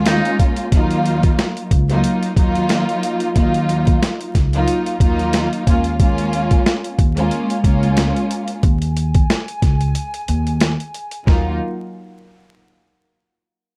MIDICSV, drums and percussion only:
0, 0, Header, 1, 2, 480
1, 0, Start_track
1, 0, Key_signature, -6, "minor"
1, 0, Tempo, 659341
1, 526, Time_signature, 4, 2, 24, 8
1, 10019, End_track
2, 0, Start_track
2, 0, Title_t, "Drums"
2, 40, Note_on_c, 9, 42, 103
2, 47, Note_on_c, 9, 38, 116
2, 113, Note_off_c, 9, 42, 0
2, 120, Note_off_c, 9, 38, 0
2, 184, Note_on_c, 9, 42, 44
2, 257, Note_off_c, 9, 42, 0
2, 287, Note_on_c, 9, 36, 86
2, 288, Note_on_c, 9, 42, 87
2, 360, Note_off_c, 9, 36, 0
2, 360, Note_off_c, 9, 42, 0
2, 411, Note_on_c, 9, 42, 53
2, 484, Note_off_c, 9, 42, 0
2, 525, Note_on_c, 9, 36, 110
2, 525, Note_on_c, 9, 42, 82
2, 597, Note_off_c, 9, 36, 0
2, 597, Note_off_c, 9, 42, 0
2, 659, Note_on_c, 9, 42, 50
2, 732, Note_off_c, 9, 42, 0
2, 768, Note_on_c, 9, 42, 67
2, 841, Note_off_c, 9, 42, 0
2, 897, Note_on_c, 9, 42, 53
2, 900, Note_on_c, 9, 36, 97
2, 970, Note_off_c, 9, 42, 0
2, 973, Note_off_c, 9, 36, 0
2, 1010, Note_on_c, 9, 38, 114
2, 1010, Note_on_c, 9, 42, 88
2, 1083, Note_off_c, 9, 38, 0
2, 1083, Note_off_c, 9, 42, 0
2, 1142, Note_on_c, 9, 42, 51
2, 1214, Note_off_c, 9, 42, 0
2, 1245, Note_on_c, 9, 36, 96
2, 1246, Note_on_c, 9, 42, 70
2, 1318, Note_off_c, 9, 36, 0
2, 1319, Note_off_c, 9, 42, 0
2, 1379, Note_on_c, 9, 42, 48
2, 1452, Note_off_c, 9, 42, 0
2, 1483, Note_on_c, 9, 42, 86
2, 1556, Note_off_c, 9, 42, 0
2, 1620, Note_on_c, 9, 42, 55
2, 1693, Note_off_c, 9, 42, 0
2, 1722, Note_on_c, 9, 36, 106
2, 1724, Note_on_c, 9, 42, 69
2, 1794, Note_off_c, 9, 36, 0
2, 1797, Note_off_c, 9, 42, 0
2, 1859, Note_on_c, 9, 42, 45
2, 1932, Note_off_c, 9, 42, 0
2, 1960, Note_on_c, 9, 42, 101
2, 1966, Note_on_c, 9, 38, 115
2, 2032, Note_off_c, 9, 42, 0
2, 2039, Note_off_c, 9, 38, 0
2, 2103, Note_on_c, 9, 42, 43
2, 2176, Note_off_c, 9, 42, 0
2, 2207, Note_on_c, 9, 42, 88
2, 2280, Note_off_c, 9, 42, 0
2, 2331, Note_on_c, 9, 42, 52
2, 2404, Note_off_c, 9, 42, 0
2, 2444, Note_on_c, 9, 36, 110
2, 2444, Note_on_c, 9, 42, 82
2, 2517, Note_off_c, 9, 36, 0
2, 2517, Note_off_c, 9, 42, 0
2, 2579, Note_on_c, 9, 42, 52
2, 2652, Note_off_c, 9, 42, 0
2, 2688, Note_on_c, 9, 42, 68
2, 2761, Note_off_c, 9, 42, 0
2, 2817, Note_on_c, 9, 42, 53
2, 2820, Note_on_c, 9, 36, 104
2, 2890, Note_off_c, 9, 42, 0
2, 2893, Note_off_c, 9, 36, 0
2, 2930, Note_on_c, 9, 42, 92
2, 2931, Note_on_c, 9, 38, 121
2, 3003, Note_off_c, 9, 38, 0
2, 3003, Note_off_c, 9, 42, 0
2, 3062, Note_on_c, 9, 42, 49
2, 3134, Note_off_c, 9, 42, 0
2, 3166, Note_on_c, 9, 36, 95
2, 3167, Note_on_c, 9, 38, 39
2, 3167, Note_on_c, 9, 42, 69
2, 3239, Note_off_c, 9, 36, 0
2, 3240, Note_off_c, 9, 38, 0
2, 3240, Note_off_c, 9, 42, 0
2, 3300, Note_on_c, 9, 42, 48
2, 3372, Note_off_c, 9, 42, 0
2, 3404, Note_on_c, 9, 42, 88
2, 3476, Note_off_c, 9, 42, 0
2, 3541, Note_on_c, 9, 42, 55
2, 3614, Note_off_c, 9, 42, 0
2, 3642, Note_on_c, 9, 36, 105
2, 3646, Note_on_c, 9, 42, 71
2, 3715, Note_off_c, 9, 36, 0
2, 3718, Note_off_c, 9, 42, 0
2, 3781, Note_on_c, 9, 42, 45
2, 3853, Note_off_c, 9, 42, 0
2, 3881, Note_on_c, 9, 42, 102
2, 3887, Note_on_c, 9, 38, 114
2, 3953, Note_off_c, 9, 42, 0
2, 3960, Note_off_c, 9, 38, 0
2, 4024, Note_on_c, 9, 42, 44
2, 4097, Note_off_c, 9, 42, 0
2, 4127, Note_on_c, 9, 36, 86
2, 4129, Note_on_c, 9, 42, 87
2, 4200, Note_off_c, 9, 36, 0
2, 4202, Note_off_c, 9, 42, 0
2, 4252, Note_on_c, 9, 42, 53
2, 4325, Note_off_c, 9, 42, 0
2, 4365, Note_on_c, 9, 36, 114
2, 4365, Note_on_c, 9, 42, 83
2, 4438, Note_off_c, 9, 36, 0
2, 4438, Note_off_c, 9, 42, 0
2, 4500, Note_on_c, 9, 42, 52
2, 4573, Note_off_c, 9, 42, 0
2, 4608, Note_on_c, 9, 42, 69
2, 4681, Note_off_c, 9, 42, 0
2, 4738, Note_on_c, 9, 42, 52
2, 4740, Note_on_c, 9, 36, 101
2, 4810, Note_off_c, 9, 42, 0
2, 4813, Note_off_c, 9, 36, 0
2, 4851, Note_on_c, 9, 38, 117
2, 4851, Note_on_c, 9, 42, 94
2, 4923, Note_off_c, 9, 38, 0
2, 4923, Note_off_c, 9, 42, 0
2, 4982, Note_on_c, 9, 42, 50
2, 5055, Note_off_c, 9, 42, 0
2, 5086, Note_on_c, 9, 36, 101
2, 5087, Note_on_c, 9, 42, 70
2, 5159, Note_off_c, 9, 36, 0
2, 5159, Note_off_c, 9, 42, 0
2, 5219, Note_on_c, 9, 42, 49
2, 5292, Note_off_c, 9, 42, 0
2, 5323, Note_on_c, 9, 42, 89
2, 5396, Note_off_c, 9, 42, 0
2, 5460, Note_on_c, 9, 42, 57
2, 5533, Note_off_c, 9, 42, 0
2, 5562, Note_on_c, 9, 36, 107
2, 5565, Note_on_c, 9, 42, 73
2, 5635, Note_off_c, 9, 36, 0
2, 5637, Note_off_c, 9, 42, 0
2, 5700, Note_on_c, 9, 42, 45
2, 5773, Note_off_c, 9, 42, 0
2, 5800, Note_on_c, 9, 42, 105
2, 5806, Note_on_c, 9, 38, 113
2, 5872, Note_off_c, 9, 42, 0
2, 5879, Note_off_c, 9, 38, 0
2, 5943, Note_on_c, 9, 42, 43
2, 6016, Note_off_c, 9, 42, 0
2, 6047, Note_on_c, 9, 42, 89
2, 6120, Note_off_c, 9, 42, 0
2, 6171, Note_on_c, 9, 42, 53
2, 6243, Note_off_c, 9, 42, 0
2, 6284, Note_on_c, 9, 36, 116
2, 6284, Note_on_c, 9, 42, 86
2, 6356, Note_off_c, 9, 42, 0
2, 6357, Note_off_c, 9, 36, 0
2, 6419, Note_on_c, 9, 42, 53
2, 6492, Note_off_c, 9, 42, 0
2, 6527, Note_on_c, 9, 42, 73
2, 6600, Note_off_c, 9, 42, 0
2, 6657, Note_on_c, 9, 42, 53
2, 6660, Note_on_c, 9, 36, 100
2, 6730, Note_off_c, 9, 42, 0
2, 6733, Note_off_c, 9, 36, 0
2, 6771, Note_on_c, 9, 38, 119
2, 6771, Note_on_c, 9, 42, 96
2, 6843, Note_off_c, 9, 38, 0
2, 6843, Note_off_c, 9, 42, 0
2, 6903, Note_on_c, 9, 42, 50
2, 6975, Note_off_c, 9, 42, 0
2, 7006, Note_on_c, 9, 36, 96
2, 7006, Note_on_c, 9, 42, 70
2, 7007, Note_on_c, 9, 38, 39
2, 7078, Note_off_c, 9, 36, 0
2, 7079, Note_off_c, 9, 42, 0
2, 7080, Note_off_c, 9, 38, 0
2, 7139, Note_on_c, 9, 42, 51
2, 7211, Note_off_c, 9, 42, 0
2, 7244, Note_on_c, 9, 42, 89
2, 7316, Note_off_c, 9, 42, 0
2, 7381, Note_on_c, 9, 42, 55
2, 7453, Note_off_c, 9, 42, 0
2, 7485, Note_on_c, 9, 42, 73
2, 7558, Note_off_c, 9, 42, 0
2, 7620, Note_on_c, 9, 42, 46
2, 7693, Note_off_c, 9, 42, 0
2, 7720, Note_on_c, 9, 42, 102
2, 7726, Note_on_c, 9, 38, 114
2, 7793, Note_off_c, 9, 42, 0
2, 7799, Note_off_c, 9, 38, 0
2, 7863, Note_on_c, 9, 42, 44
2, 7936, Note_off_c, 9, 42, 0
2, 7968, Note_on_c, 9, 42, 88
2, 8040, Note_off_c, 9, 42, 0
2, 8091, Note_on_c, 9, 42, 51
2, 8164, Note_off_c, 9, 42, 0
2, 8206, Note_on_c, 9, 36, 108
2, 8211, Note_on_c, 9, 38, 86
2, 8278, Note_off_c, 9, 36, 0
2, 8284, Note_off_c, 9, 38, 0
2, 10019, End_track
0, 0, End_of_file